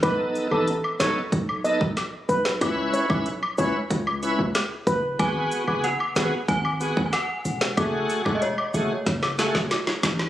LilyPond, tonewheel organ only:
\new Staff \with { instrumentName = "Tonewheel organ" } { \time 4/4 \key cis \minor \tempo 4 = 93 <b dis' a'>8. <b dis' a'>16 r8 <b dis' a'>16 r8. <b dis' a'>16 r4 r16 | <cis' e' b'>8. <cis' e' b'>16 r8 <cis' e' b'>16 r8. <cis' e' b'>16 r4 r16 | <b fis' gis'>8. <b fis' gis'>16 r8 <b fis' gis'>16 r8. <b fis' gis'>16 r4 r16 | <a fis' gis'>8. <a fis' gis'>16 r8 <a fis' gis'>16 r8. <a fis' gis'>16 r4 r16 | }